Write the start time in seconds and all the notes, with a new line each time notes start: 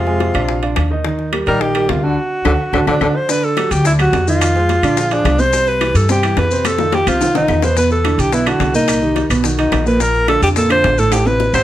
Already playing: F2 C3 F4
0.06 G#3 G#4 G#5, high bongo
0.20 high bongo, high timbale
0.34 A#1 D4 D5 F5, high bongo, high timbale, claves
0.49 high bongo
0.63 D4 D5 F5, high bongo, high timbale
0.76 D#2, high bongo, low bongo, high timbale, claves
0.90 D#3 D#4 D#5
1.04 D#3 D#4 D#5, high bongo
1.19 high bongo
1.32 G3 G4 A#4, high bongo, high timbale, claves
1.47 A#1 D#3 G3 D#4 A#4 D#5, high bongo, high timbale
1.61 D#3 G4, high bongo
1.75 G3 G4 A#4, high bongo, high timbale, claves
1.89 D2 C3 F4, high bongo, low bongo, high timbale, low timbale
2.03 D3 D4 F#4 D5
2.45 D2 D3 D4 F#4 A4, low bongo, high timbale, claves
2.73 D2 D3 D4 F#4 A4, low bongo, high timbale, claves
2.87 D2 D3 D4 F#4 A4, low bongo, high timbale, claves
3.01 D2 D3 D4 F#4 A4, low bongo, high timbale, claves
3.16 C5
3.29 D3 D4 B4 D5, high bongo, maracas
3.43 A4, high bongo
3.57 F#3 F#4 G4, high bongo, high timbale, claves, maracas
3.71 D2 G4, high bongo, high timbale, maracas
3.85 D3 D4 E4 D5, high bongo, maracas
3.99 F#3 F#4 G4, high bongo, high timbale, claves, maracas
4.13 F2, high bongo, low bongo, high timbale, low timbale, maracas
4.27 D#3 D#4 F4 D#5, maracas
4.41 high bongo, high timbale, claves, maracas
4.55 G#3 G#4 C5, high bongo, maracas
4.69 high bongo, high timbale, maracas
4.83 A#1 D3 D4 D5, high bongo, high timbale, claves, maracas
4.97 F3 F4 G#4, high bongo, maracas
5.11 F3 D4 F4 G#4, high bongo, high timbale, maracas
5.25 C2, high bongo, low bongo, high timbale, low timbale, claves, maracas
5.39 C3 C4 C5, maracas
5.53 C3 C4 C5, high bongo, maracas
5.67 B4, high bongo, maracas
5.81 E3 E4 G4, high bongo, high timbale, claves, maracas
5.95 G2 A4, high bongo, high timbale, maracas
6.09 C3 C4 G4 C5, high bongo, maracas
6.23 E3 E4 G4, high bongo, high timbale, claves, maracas
6.37 F2 B4, high bongo, low bongo, high timbale, low timbale, maracas
6.51 C3 C4 C5, maracas
6.65 A4, high bongo, high timbale, claves, maracas
6.78 D#3 D#4 F4, high bongo, maracas
6.92 G4, high bongo, high timbale, maracas
7.07 C2 C3 C4 F4 C5, low bongo, high timbale, claves, maracas
7.21 D#3 D#4 F4, low bongo, high timbale, maracas
7.35 D#3 D#4 F4, low bongo, high timbale, maracas
7.48 E2, low bongo, low timbale, claves, maracas
7.62 B2 B3 B4 C5, low bongo, low timbale, maracas
7.77 B2 B3 B4, high bongo, maracas
7.91 A4, high bongo, maracas
8.04 D3 D4 E4, high bongo, high timbale, claves, maracas
8.18 B1 G4, high bongo, high timbale, maracas
8.32 B2 B3 E4 B4, high bongo, maracas
8.46 D3 D4 E4 F#4, high bongo, high timbale, claves, maracas
8.60 C2, high bongo, low bongo, high timbale, low timbale, maracas
8.74 A#2 A#3 D#4 A#4, maracas
8.88 high bongo, high timbale, claves, maracas
9.02 D#3 D#4 G4, high bongo, maracas
9.16 high bongo, high timbale, maracas
9.30 B1 B2 B3 B4, high bongo, high timbale, claves, maracas
9.44 D#3 D#4 F#4, high bongo, maracas
9.58 D#3 D#4 F#4, high bongo, high timbale
9.72 A#1, high bongo, low bongo, high timbale, low timbale, claves, maracas
9.86 A#2 A#3 A#4 B4, maracas
10.00 A#2 A#3 A#4, high bongo, maracas
10.14 high bongo
10.28 D3 D4 F4 A4, high bongo, high timbale, claves, maracas
10.42 F2 G4, high bongo, high timbale, maracas
10.56 A#2 A#3 A4 A#4, high bongo, maracas
10.70 D3 D4 F4 C5, high bongo, high timbale, claves
10.84 A1, high bongo, low bongo, high timbale, low timbale, maracas
10.98 A2 A3 A4, maracas
11.12 G4, high bongo, high timbale, claves, maracas
11.26 C3 C4 E4 B4, high bongo, maracas
11.40 high bongo, maracas
11.53 G#1 C3 C4 C5, high bongo, high timbale, claves, maracas